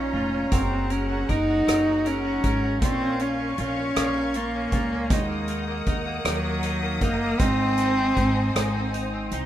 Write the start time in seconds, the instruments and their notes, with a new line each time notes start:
Already playing: clean electric guitar A#2 C#4 F4, cello C#4, string section F4 C#5 A#5
0.13 upright bass F1, clean electric guitar F4
0.32 clean electric guitar C#4
0.51 upright bass F#1, clean electric guitar F#3 A#4, cello C4, string section G#4 F#5, kick, closed hi-hat
0.71 clean electric guitar F#4
0.90 cello C#4, clean electric guitar A#4, closed hi-hat
1.09 clean electric guitar F#4
1.29 upright bass F#1, cello D#4, clean electric guitar A#4, kick, closed hi-hat
1.48 clean electric guitar F#4
1.67 upright bass F#1, clean electric guitar F#3 A#4, cross-stick, closed hi-hat
1.86 clean electric guitar F#4
2.05 cello C#4, clean electric guitar A#4, closed hi-hat
2.25 clean electric guitar F#4
2.44 upright bass G#1, clean electric guitar A#4, kick, closed hi-hat
2.64 clean electric guitar F#4
2.82 upright bass A#1, clean electric guitar A#2 F4, cello C4, string section A#4 F5 C#6, kick, closed hi-hat
3.02 clean electric guitar C#4
3.19 cello C#4, clean electric guitar F4, closed hi-hat
3.39 clean electric guitar C#4
3.58 upright bass A#1, cello C#4, clean electric guitar F4, closed hi-hat
3.78 clean electric guitar C#4
3.96 upright bass A#1, clean electric guitar A#2 F4, cross-stick, closed hi-hat
4.16 clean electric guitar C#4
4.34 cello A#3, clean electric guitar F4, closed hi-hat
4.55 clean electric guitar C#4
4.72 upright bass C#2, clean electric guitar F4, kick, closed hi-hat
4.93 clean electric guitar C#4
5.10 upright bass D#2, clean electric guitar D#3 D#4, cello G#3, string section A#4 F#5 D#6, kick, closed hi-hat
5.29 clean electric guitar A#3
5.48 clean electric guitar D#4, closed hi-hat
5.68 clean electric guitar A#3
5.86 upright bass D#2, clean electric guitar D#4, kick, closed hi-hat
6.06 clean electric guitar A#3
6.25 upright bass D#2, clean electric guitar D#3 D#4, cello F#3, cross-stick, closed hi-hat
6.45 clean electric guitar A#3
6.63 clean electric guitar D#4, closed hi-hat
6.83 clean electric guitar A#3
7.01 upright bass F#1, cello A#3, clean electric guitar D#4, kick, closed hi-hat
7.22 clean electric guitar A#3
7.39 upright bass G#1, clean electric guitar G#2 D#4, cello C4, string section C5 G#5, kick, closed hi-hat
7.60 clean electric guitar C4
7.78 clean electric guitar D#4, closed hi-hat
7.98 clean electric guitar C4
8.17 upright bass G#1, clean electric guitar D#4, kick, closed hi-hat
8.37 clean electric guitar C4
8.55 upright bass G#1, clean electric guitar G#2 D#4, cross-stick, closed hi-hat
8.75 clean electric guitar C4
8.94 clean electric guitar D#4, closed hi-hat
9.14 clean electric guitar C4
9.31 upright bass C2, clean electric guitar D#4, closed hi-hat